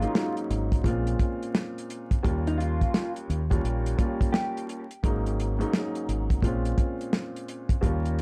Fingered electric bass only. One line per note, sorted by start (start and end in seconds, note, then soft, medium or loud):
0.50 0.80 G#1 medium
0.84 1.14 A#1 loud
2.25 2.83 D#2 loud
3.29 3.59 D#2 medium
3.64 3.94 A#1 medium
5.04 5.62 G#1 loud
6.08 6.38 G#1 medium
6.43 6.72 A#1 loud
7.83 8.22 D#2 loud